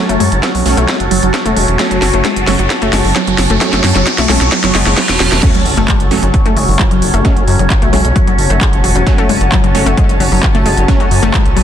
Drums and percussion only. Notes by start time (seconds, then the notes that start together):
0.09 closed hi-hat
0.20 open hi-hat
0.32 closed hi-hat
0.43 kick, snare, closed hi-hat
0.55 open hi-hat
0.66 open hi-hat
0.77 closed hi-hat
0.88 kick, snare, closed hi-hat
1.00 closed hi-hat
1.11 open hi-hat
1.23 closed hi-hat
1.34 kick, snare, closed hi-hat
1.46 closed hi-hat
1.57 open hi-hat
1.68 closed hi-hat
1.79 kick, snare, closed hi-hat
1.91 closed hi-hat
2.02 snare, open hi-hat
2.14 closed hi-hat
2.25 kick, snare, closed hi-hat
2.36 closed hi-hat
2.47 snare, open hi-hat
2.59 closed hi-hat
2.70 kick, snare, closed hi-hat
2.82 closed hi-hat
2.93 snare, open hi-hat
3.05 open hi-hat
3.16 kick, snare, closed hi-hat
3.27 closed hi-hat
3.38 snare, open hi-hat
3.50 closed hi-hat
3.61 kick, snare, closed hi-hat
3.73 snare, closed hi-hat
3.84 snare, open hi-hat
3.96 snare, closed hi-hat
4.06 kick, snare, closed hi-hat
4.18 snare, open hi-hat
4.29 snare, open hi-hat
4.41 snare, closed hi-hat
4.52 kick, snare, closed hi-hat
4.64 snare, closed hi-hat
4.75 snare, open hi-hat
4.86 snare, closed hi-hat
4.97 kick, snare, closed hi-hat
5.09 snare, closed hi-hat
5.20 snare, open hi-hat
5.32 snare, closed hi-hat
5.43 kick, closed hi-hat, crash
5.55 closed hi-hat
5.66 open hi-hat
5.77 closed hi-hat
5.88 kick, clap, closed hi-hat
6.00 closed hi-hat
6.11 open hi-hat
6.23 closed hi-hat
6.34 kick, closed hi-hat
6.46 closed hi-hat
6.57 open hi-hat
6.68 open hi-hat
6.79 kick, clap, closed hi-hat
6.91 closed hi-hat
7.02 open hi-hat
7.14 closed hi-hat
7.25 kick, closed hi-hat
7.37 closed hi-hat
7.48 open hi-hat
7.59 closed hi-hat
7.70 kick, clap, closed hi-hat
7.82 closed hi-hat
7.93 open hi-hat
8.05 closed hi-hat
8.16 kick, closed hi-hat
8.27 closed hi-hat
8.39 open hi-hat
8.50 closed hi-hat
8.61 kick, clap, closed hi-hat
8.73 closed hi-hat
8.84 open hi-hat
8.96 closed hi-hat
9.07 kick, closed hi-hat
9.18 closed hi-hat
9.29 open hi-hat
9.41 closed hi-hat
9.52 kick, clap, closed hi-hat
9.64 closed hi-hat
9.75 open hi-hat
9.87 closed hi-hat
9.97 kick, closed hi-hat
10.09 closed hi-hat
10.20 open hi-hat
10.32 open hi-hat
10.43 kick, clap
10.55 closed hi-hat
10.66 open hi-hat
10.77 closed hi-hat
10.88 kick, closed hi-hat
11.00 closed hi-hat
11.11 open hi-hat
11.23 closed hi-hat
11.34 kick, clap, closed hi-hat
11.46 closed hi-hat
11.57 open hi-hat